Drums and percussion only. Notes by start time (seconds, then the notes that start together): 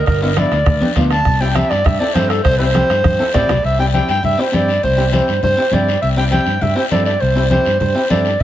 0.06 bombo low, bombo rim, long guiro
0.36 bombo rim, high conga, short guiro
0.51 bombo rim, short guiro
0.66 bombo low, bombo rim, low conga, long guiro
0.82 high conga
0.95 bombo low, bombo rim, high conga, short guiro
1.11 bombo rim, short guiro
1.25 bombo low, bombo rim, long guiro
1.56 bombo rim, high conga, short guiro
1.71 bombo rim, short guiro
1.85 bombo low, bombo rim, low conga, long guiro
2.15 bombo rim, high conga, short guiro
2.30 bombo rim, short guiro
2.45 bombo low, bombo rim, long guiro
2.75 bombo rim, high conga, short guiro
2.90 bombo rim, short guiro
3.04 bombo low, bombo rim, high conga, long guiro
3.34 bombo low, bombo rim, low conga, short guiro
3.49 bombo rim, low conga, short guiro
3.64 high conga, long guiro
3.94 high conga, short guiro
4.08 short guiro
4.23 high conga, low conga, long guiro
4.53 high conga, short guiro
4.68 short guiro
4.83 high conga, low conga, long guiro
5.13 high conga, short guiro
5.28 short guiro
5.43 high conga, low conga, long guiro
5.72 high conga, low conga, short guiro
5.88 short guiro
6.03 high conga, long guiro
6.32 high conga, short guiro
6.46 short guiro
6.61 high conga, low conga, long guiro
6.91 high conga, short guiro
7.05 short guiro
7.20 high conga, long guiro
7.50 high conga, short guiro
7.65 short guiro
7.80 high conga, low conga, long guiro
8.10 high conga, short guiro
8.25 short guiro